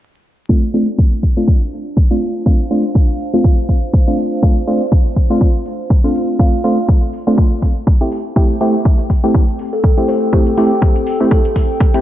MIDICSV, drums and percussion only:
0, 0, Header, 1, 2, 480
1, 0, Start_track
1, 0, Key_signature, -1, "minor"
1, 0, Tempo, 491803
1, 481, Time_signature, 4, 2, 24, 8
1, 11725, End_track
2, 0, Start_track
2, 0, Title_t, "Drums"
2, 481, Note_on_c, 9, 36, 103
2, 578, Note_off_c, 9, 36, 0
2, 720, Note_on_c, 9, 46, 100
2, 818, Note_off_c, 9, 46, 0
2, 961, Note_on_c, 9, 36, 108
2, 1058, Note_off_c, 9, 36, 0
2, 1200, Note_on_c, 9, 46, 82
2, 1201, Note_on_c, 9, 36, 58
2, 1298, Note_off_c, 9, 36, 0
2, 1298, Note_off_c, 9, 46, 0
2, 1441, Note_on_c, 9, 36, 101
2, 1538, Note_off_c, 9, 36, 0
2, 1681, Note_on_c, 9, 46, 96
2, 1778, Note_off_c, 9, 46, 0
2, 1921, Note_on_c, 9, 36, 102
2, 2018, Note_off_c, 9, 36, 0
2, 2161, Note_on_c, 9, 46, 84
2, 2258, Note_off_c, 9, 46, 0
2, 2401, Note_on_c, 9, 36, 108
2, 2498, Note_off_c, 9, 36, 0
2, 2640, Note_on_c, 9, 46, 106
2, 2738, Note_off_c, 9, 46, 0
2, 2881, Note_on_c, 9, 36, 114
2, 2978, Note_off_c, 9, 36, 0
2, 3121, Note_on_c, 9, 46, 92
2, 3218, Note_off_c, 9, 46, 0
2, 3361, Note_on_c, 9, 36, 105
2, 3458, Note_off_c, 9, 36, 0
2, 3600, Note_on_c, 9, 46, 102
2, 3601, Note_on_c, 9, 36, 57
2, 3698, Note_off_c, 9, 36, 0
2, 3698, Note_off_c, 9, 46, 0
2, 3841, Note_on_c, 9, 36, 108
2, 3938, Note_off_c, 9, 36, 0
2, 4081, Note_on_c, 9, 46, 91
2, 4178, Note_off_c, 9, 46, 0
2, 4321, Note_on_c, 9, 36, 115
2, 4418, Note_off_c, 9, 36, 0
2, 4561, Note_on_c, 9, 46, 103
2, 4658, Note_off_c, 9, 46, 0
2, 4801, Note_on_c, 9, 36, 117
2, 4898, Note_off_c, 9, 36, 0
2, 5040, Note_on_c, 9, 46, 89
2, 5041, Note_on_c, 9, 36, 62
2, 5138, Note_off_c, 9, 36, 0
2, 5138, Note_off_c, 9, 46, 0
2, 5280, Note_on_c, 9, 36, 107
2, 5378, Note_off_c, 9, 36, 0
2, 5520, Note_on_c, 9, 46, 100
2, 5618, Note_off_c, 9, 46, 0
2, 5761, Note_on_c, 9, 36, 109
2, 5858, Note_off_c, 9, 36, 0
2, 6000, Note_on_c, 9, 46, 91
2, 6098, Note_off_c, 9, 46, 0
2, 6241, Note_on_c, 9, 36, 113
2, 6338, Note_off_c, 9, 36, 0
2, 6480, Note_on_c, 9, 46, 107
2, 6578, Note_off_c, 9, 46, 0
2, 6721, Note_on_c, 9, 36, 114
2, 6818, Note_off_c, 9, 36, 0
2, 6960, Note_on_c, 9, 46, 90
2, 7058, Note_off_c, 9, 46, 0
2, 7201, Note_on_c, 9, 36, 107
2, 7298, Note_off_c, 9, 36, 0
2, 7440, Note_on_c, 9, 46, 100
2, 7441, Note_on_c, 9, 36, 57
2, 7538, Note_off_c, 9, 36, 0
2, 7538, Note_off_c, 9, 46, 0
2, 7681, Note_on_c, 9, 36, 112
2, 7778, Note_off_c, 9, 36, 0
2, 7920, Note_on_c, 9, 46, 92
2, 8018, Note_off_c, 9, 46, 0
2, 8161, Note_on_c, 9, 36, 110
2, 8161, Note_on_c, 9, 42, 70
2, 8258, Note_off_c, 9, 36, 0
2, 8258, Note_off_c, 9, 42, 0
2, 8296, Note_on_c, 9, 42, 46
2, 8393, Note_off_c, 9, 42, 0
2, 8401, Note_on_c, 9, 46, 98
2, 8498, Note_off_c, 9, 46, 0
2, 8640, Note_on_c, 9, 42, 68
2, 8641, Note_on_c, 9, 36, 116
2, 8738, Note_off_c, 9, 36, 0
2, 8738, Note_off_c, 9, 42, 0
2, 8776, Note_on_c, 9, 42, 47
2, 8873, Note_off_c, 9, 42, 0
2, 8881, Note_on_c, 9, 36, 56
2, 8881, Note_on_c, 9, 46, 87
2, 8978, Note_off_c, 9, 36, 0
2, 8978, Note_off_c, 9, 46, 0
2, 9121, Note_on_c, 9, 36, 108
2, 9121, Note_on_c, 9, 42, 66
2, 9218, Note_off_c, 9, 36, 0
2, 9218, Note_off_c, 9, 42, 0
2, 9256, Note_on_c, 9, 42, 44
2, 9353, Note_off_c, 9, 42, 0
2, 9361, Note_on_c, 9, 46, 99
2, 9458, Note_off_c, 9, 46, 0
2, 9601, Note_on_c, 9, 36, 103
2, 9601, Note_on_c, 9, 42, 69
2, 9698, Note_off_c, 9, 36, 0
2, 9698, Note_off_c, 9, 42, 0
2, 9736, Note_on_c, 9, 42, 47
2, 9833, Note_off_c, 9, 42, 0
2, 9840, Note_on_c, 9, 46, 85
2, 9938, Note_off_c, 9, 46, 0
2, 10080, Note_on_c, 9, 42, 73
2, 10081, Note_on_c, 9, 36, 105
2, 10178, Note_off_c, 9, 36, 0
2, 10178, Note_off_c, 9, 42, 0
2, 10216, Note_on_c, 9, 42, 49
2, 10313, Note_off_c, 9, 42, 0
2, 10320, Note_on_c, 9, 46, 100
2, 10418, Note_off_c, 9, 46, 0
2, 10561, Note_on_c, 9, 36, 112
2, 10561, Note_on_c, 9, 42, 72
2, 10658, Note_off_c, 9, 36, 0
2, 10658, Note_off_c, 9, 42, 0
2, 10695, Note_on_c, 9, 42, 49
2, 10793, Note_off_c, 9, 42, 0
2, 10800, Note_on_c, 9, 46, 84
2, 10898, Note_off_c, 9, 46, 0
2, 11040, Note_on_c, 9, 42, 73
2, 11041, Note_on_c, 9, 36, 105
2, 11138, Note_off_c, 9, 36, 0
2, 11138, Note_off_c, 9, 42, 0
2, 11175, Note_on_c, 9, 42, 47
2, 11273, Note_off_c, 9, 42, 0
2, 11280, Note_on_c, 9, 46, 99
2, 11281, Note_on_c, 9, 36, 54
2, 11378, Note_off_c, 9, 36, 0
2, 11378, Note_off_c, 9, 46, 0
2, 11521, Note_on_c, 9, 36, 100
2, 11521, Note_on_c, 9, 42, 73
2, 11618, Note_off_c, 9, 36, 0
2, 11618, Note_off_c, 9, 42, 0
2, 11655, Note_on_c, 9, 42, 51
2, 11725, Note_off_c, 9, 42, 0
2, 11725, End_track
0, 0, End_of_file